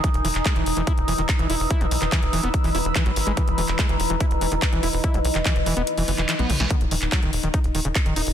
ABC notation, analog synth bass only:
X:1
M:4/4
L:1/16
Q:1/4=144
K:Fblyd
V:1 name="Analog synth bass" clef=bass
z =E,,, E,,, E,,, z E,,, E,,, E,,, z E,,, E,,, E,,, z E,,, E,,, E,,, | z =E,,, =B,,, E,,, z E,,, E,,, E,,, z E,,, E,,, E,,, z A,,, A,,, A,,, | z =E,,, E,,, E,,, z E,,, E,,, E,,, z E,,, E,,, E,,, z E,,, E,,, E,,, | z =E,,, =B,,, E,,, z E,,, E,,, E,,, z E,,, G,,, E,,, z B,,, B,,, B,,, |
z E,,, E,,, E,,, z E,,, E,,, E,,, z E,,, E,,, E,,, z E,,, E,,, E,,, |]